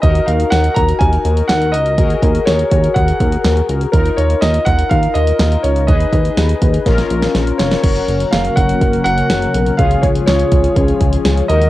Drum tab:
CC |----------------|----------------|----------------|----------------|
HH |xxxxxxxxxxxxxxxx|xxxxxxxxxxxxxxxx|xxxxxxxxxxxxxxxx|xxxxxxxxxxxxxxxx|
SD |----o-------o---|----o-------o---|----o-------o---|----o---oo-oo-oo|
BD |o-----o-o-------|o-o---o-o-o-----|o-----o-o-------|o-o---o-o-------|

CC |x---------------|----------------|
HH |xxxxxxxxxxxxxxxx|xxxxxxxxxxxxxxxx|
SD |----o-------o---|----o-------o---|
BD |o-----o-o-------|o-o---o-o-o-----|